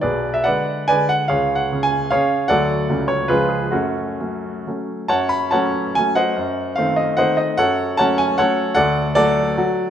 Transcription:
<<
  \new Staff \with { instrumentName = "Grand piano" } { \time 3/4 \key fis \minor \tempo 4 = 146 << { d''8. e''16 fis''4 gis''8 fis''8 | \tuplet 3/2 { eis''4 fis''8~ fis''8 gis''4 } eis''4 | fis''4. cis''8 \tuplet 3/2 { b'8. gis'8 gis'16 } | fis'2 r4 |
a''8 b''8 a''4 gis''8 fis''8~ | fis''4 eis''8 dis''8 fis''8 dis''8 | fis''4 a''8 gis''8 fis''4 | fis''4 d''2 | } \\ { <gis' b'>8. r16 <b' d''>4 <b' d''>8 r8 | <gis' cis''>8 r4. <gis' cis''>4 | <a' d''>4. r8 <eis' gis'>8 r8 | <a cis'>2 r4 |
<cis'' fis''>8 r8 <cis'' fis''>4 r8 <bis' dis''>8~ | <bis' dis''>4 r4 <c'' dis''>8 r8 | <a' cis''>4 <cis'' fis''>8 r8 <a' cis''>4 | <a' d''>4 <fis' a'>2 | } >> }
  \new Staff \with { instrumentName = "Grand piano" } { \clef bass \time 3/4 \key fis \minor b,,4 <d gis gis'>4 <d gis gis'>4 | cis,4 <cis cis' gis'>4 <cis cis'>4 | <d, fis a fis'>4 <cis, fis a cis'>4 <cis, eis gis cis'>4 | fis,4 <fis a cis'>4 <fis a cis'>4 |
fis,4 <fis a cis'>4 <fis a cis'>4 | fis,4 <dis a c'>4 <dis a c'>4 | fis,4 <fis a cis'>4 <fis a cis'>4 | d,4 <fis a>4 <fis a fis'>4 | }
>>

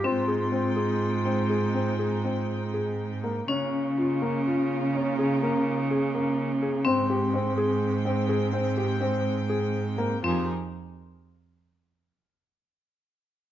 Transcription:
<<
  \new Staff \with { instrumentName = "Clarinet" } { \time 7/4 \key f \minor \tempo 4 = 124 f'1. r4 | r1. r4 | r1. r4 | r1. r4 | }
  \new Staff \with { instrumentName = "String section" } { \time 7/4 \key f \minor <aes ees' g''>1.~ <aes ees' g''>4 | <des bes ees' f'>1.~ <des bes ees' f'>4 | <aes c' g''>1.~ <aes c' g''>4 | <f ees' g' aes' bes'>8 r1. r8 | }
  \new Staff \with { instrumentName = "Felt piano" } { \time 7/4 \key f \minor c'8 aes'8 c'8 aes'4 c'8 aes'8 c'8 aes'8 c'4 aes'4 bes8 | des'4 f'8 bes8 f'4 des'8 aes'8 bes4 aes'8 bes4 aes'8 | c'8 g'8 c'8 aes'4 c'8 aes'8 c'8 g'8 c'4 aes'4 bes8 | f'8 r1. r8 | }
  \new Staff \with { instrumentName = "Vibraphone" } { \time 7/4 \key f \minor c'1.~ c'8 r8 | des'1.~ des'4 | c'1.~ c'4 | c'8 r1. r8 | }
  \new Staff \with { instrumentName = "Cello" } { \clef bass \time 7/4 \key f \minor aes,1.~ aes,4 | des1.~ des4 | aes,1.~ aes,4 | f,8 r1. r8 | }
>>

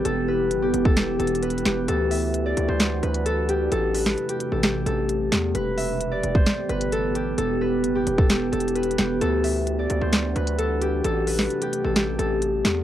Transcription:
<<
  \new Staff \with { instrumentName = "Harp" } { \time 4/4 \key e \minor \tempo 4 = 131 a'8 b'8. g'8 a'16 g'8 a'8 b'8 g'8 | a'8 e''8. d''8 c''16 r8 b'8 a'8 g'8 | a'8 b'8. g'8 a'16 g'8 a'4. | b'8 e''8. d''8 c''16 r8 b'8 a'8 g'8 |
a'8 b'8. g'8 a'16 g'8 a'8 b'8 g'8 | a'8 e''8. d''8 c''16 r8 b'8 a'8 g'8 | a'8 b'8. g'8 a'16 g'8 a'4. | }
  \new Staff \with { instrumentName = "Ambient pad" } { \time 4/4 \key e \minor << { g'1 | fis'1 | g'1~ | g'1~ |
g'1 | fis'1 | g'1 | } \\ { <e b>1 | <e d'>1 | <c a>1 | <e b>1~ |
<e b>1 | <e d'>1 | <c a>1 | } >> }
  \new Staff \with { instrumentName = "808-style bass" } { \clef bass \time 4/4 \key e \minor e,,4 fis,,8 e,,4 e,,4 e,,8 | d,4. d,16 d,8. d,4. | a,,4 r8. a,,8. a,,4 e,8 | e,,4. e,,8 r8 g,,4. |
e,,4 fis,,8 e,,4 e,,4 e,,8 | d,4. d,16 d,8. d,4. | a,,4 r8. a,,8. a,,4 e,8 | }
  \new DrumStaff \with { instrumentName = "Drums" } \drummode { \time 4/4 hh4 hh8 hh16 bd16 \tuplet 3/2 { <hh sn>16 r16 r16 hh16 hh16 hh16 hh16 hh16 hh16 <hh sn>16 r16 r16 } | hh8 hho8 hh8 hh8 <hh sn>8 hh16 hh16 hh8 hh8 | hh8 hho16 sn16 hh16 hh16 hh8 <hh sn>8 hh8 hh8 <hh sn>8 | hh8 hho8 hh8 hh16 bd16 <hh sn>8 hh16 hh16 hh8 hh8 |
hh4 hh8 hh16 bd16 \tuplet 3/2 { <hh sn>16 r16 r16 hh16 hh16 hh16 hh16 hh16 hh16 <hh sn>16 r16 r16 } | hh8 hho8 hh8 hh8 <hh sn>8 hh16 hh16 hh8 hh8 | hh8 hho16 sn16 hh16 hh16 hh8 <hh sn>8 hh8 hh8 <hh sn>8 | }
>>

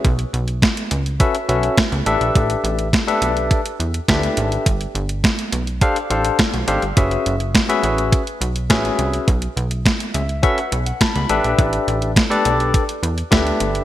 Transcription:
<<
  \new Staff \with { instrumentName = "Tine electric piano" } { \time 4/4 \key a \mixolydian \tempo 4 = 104 << { r1 | r1 | r1 | r1 |
r4. e''8 fis''8 r16 fis''16 <a'' b''>16 b''8 r16 | r1 | } \\ { r2 <cis' fis' a' b' e''>16 r16 <cis' fis' a' b' e''>8 r8 <d' g' a' b' e''>8~ | <d' g' a' b' e''>4 r16 <d' g' a' b' e''>4 r8. <d' g' a' b' e''>4 | r2 <d' g' a' c'' f''>16 r16 <d' g' a' c'' f''>8 r8 <d' g' a' c'' f''>16 r16 | <cis' fis' gis' b' e''>8. r8 <cis' fis' gis' b' e''>4 r8. <cis' fis' gis' b' e''>4 |
r2 <cis' fis' a' b' e''>16 r4 r16 <d' g' a' b' e''>8~ | <d' g' a' b' e''>4 r16 <d' g' a' b' d''>4 r8. <d' g' a' b' e''>4 | } >> }
  \new Staff \with { instrumentName = "Analog synth bass" } { \clef bass \time 4/4 \key a \mixolydian b,,8 b,,8. r16 cis,8. r16 b,,8 r16 cis,16 a,,16 ais,,16 | a,,8 a,,8. r16 b,,8. r16 e,8 d,8 gis,,8 | g,,8 g,,8. r16 b,,8. r16 a,,8 r16 b,,16 gis,,16 g,,16 | fis,,8 fis,,8. r16 a,,8. r16 b,,8 a,,8 bis,,8 |
b,,8 b,,8. r16 cis,8. r16 b,,8 r16 cis,16 a,,16 ais,,16 | a,,8 a,,8. r16 b,,8. r16 e,8 d,8 g,,8 | }
  \new DrumStaff \with { instrumentName = "Drums" } \drummode { \time 4/4 <hh bd>16 hh16 hh16 hh16 <hh bd sn>16 hh16 hh16 hh16 <hh bd>16 hh16 hh16 hh16 <hh bd sn>16 hh16 hh16 hh16 | <hh bd>16 hh16 hh16 hh16 <hh bd sn>16 hh16 hh16 hh16 <hh bd>16 hh16 hh16 hh16 <hh bd sn>16 hh16 hh16 hh16 | <hh bd>16 hh16 hh16 hh16 <hh bd sn>16 hh16 hh16 hh16 <hh bd>16 hh16 hh16 hh16 <hh bd sn>16 hh16 hh16 hh16 | <hh bd>16 hh16 hh16 hh16 <hh bd sn>16 hh16 hh16 hh16 <hh bd>16 hh16 hh16 hh16 <hh bd sn>16 hh16 hh16 hh16 |
<hh bd>16 hh16 hh16 hh16 <hh bd sn>16 hh16 hh16 hh16 <hh bd>16 hh16 hh16 hh16 <hh bd sn>16 hh16 hh16 hh16 | <hh bd>16 hh16 hh16 hh16 <hh bd sn>16 hh16 hh16 hh16 <hh bd>16 hh16 hh16 hh16 <hh bd sn>16 hh16 hh16 hh16 | }
>>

